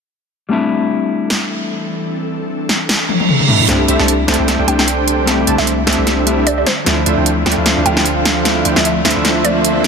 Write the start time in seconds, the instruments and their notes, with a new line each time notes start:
0.49 ambient pad E3 C4 D4 A4, clean electric guitar G3 A3 C4 D4
0.53 clean electric guitar E4
1.30 snare
2.69 snare
2.89 snare, reverse cymbal
3.09 high tom
3.20 high tom
3.29 mid tom
3.40 mid tom
3.48 clean electric guitar G3 A3 C4 D4 E4, mid tom
3.60 mid tom
3.67 808-style bass C2, ambient pad D3 A3 C4 D5, clean electric guitar G3 A3 C4 D4, analog polysynth D4 G4 A4 C5 E5, snare, closed hi-hat, riser
3.71 clean electric guitar E4
3.88 808-style bass C2, analog polysynth D4 G4 A4 C5 E5, closed hi-hat
3.99 808-style bass C2, analog polysynth D4 G4 A4 C5 A5, snare
4.08 closed hi-hat
4.27 808-style bass C2, clean electric guitar G3 A3 C4 D4 E4, analog polysynth D4 G4 A4 C5 A5, snare, closed hi-hat
4.34 closed hi-hat
4.39 808-style bass C2, analog polysynth D4 G4 A4 C5 G5
4.48 snare, closed hi-hat
4.59 808-style bass C2, analog polysynth D4 G4 A4 C5 G5
4.67 808-style bass C2, clean electric guitar G3 A3 C4 D4 E4, analog polysynth D4 G4 A4 C5 G5, synth pluck G5, closed hi-hat
4.79 synth pluck G5, snare
4.88 closed hi-hat
5.08 closed hi-hat
5.25 clean electric guitar G3 A3 C4 D4 E4, snare, closed hi-hat
5.47 808-style bass C2, analog polysynth D4 G4 A4 C5 A5, closed hi-hat
5.58 808-style bass C2, analog polysynth D4 G4 A4 C5 E5, synth pluck E5, snare
5.67 closed hi-hat
5.86 808-style bass C2, clean electric guitar G3 A3 C4 D4 E4, analog polysynth D4 G4 A4 C5 E5, snare, closed hi-hat
5.93 closed hi-hat
5.98 808-style bass C2, analog polysynth D4 G4 A4 C5 E5
6.07 snare, closed hi-hat
6.26 clean electric guitar G3 A3 C4 D4 E4, closed hi-hat
6.47 synth pluck D5, closed hi-hat
6.58 synth pluck D5
6.67 ambient pad F3 C4, synth pluck C5, snare, closed hi-hat
6.84 808-style bass D2, clean electric guitar F3 A3 C4 D4 E4, analog polysynth D4 F4 A4 C5 E5, snare, closed hi-hat
7.06 808-style bass D2, analog polysynth D4 F4 A4 C5 E5, closed hi-hat
7.17 808-style bass D2, analog polysynth D4 F4 A4 C5 G5
7.26 closed hi-hat
7.45 808-style bass D2, clean electric guitar F3 A3 C4 D4 E4, analog polysynth D4 F4 A4 C5 G5, snare, closed hi-hat
7.52 closed hi-hat
7.57 808-style bass D2, analog polysynth D4 F4 A4 C5 F5
7.66 snare, closed hi-hat
7.77 808-style bass D2, analog polysynth D4 F4 A4 C5 F5
7.85 808-style bass D2, clean electric guitar F3 A3 C4 D4 E4, analog polysynth D4 F4 A4 C5 F5, synth pluck G5, closed hi-hat
7.97 synth pluck G5, snare
8.06 closed hi-hat
8.25 snare, closed hi-hat
8.43 clean electric guitar F3 A3 C4 D4 E4, snare, closed hi-hat
8.65 808-style bass D2, analog polysynth D4 F4 A4 C5 G5, closed hi-hat
8.76 808-style bass D2, analog polysynth D4 F4 A4 C5 E5, synth pluck E5, snare
8.85 synth pluck E5, closed hi-hat
9.04 808-style bass D2, clean electric guitar F3 A3 C4 D4 E4, analog polysynth D4 F4 A4 C5 E5, snare, closed hi-hat
9.10 closed hi-hat
9.16 808-style bass D2, analog polysynth D4 F4 A4 C5 E5
9.25 snare, closed hi-hat
9.44 clean electric guitar F3 A3 C4 D4 E5, synth pluck D5, closed hi-hat
9.65 closed hi-hat
9.83 clean electric guitar F3 A3 C4, snare, closed hi-hat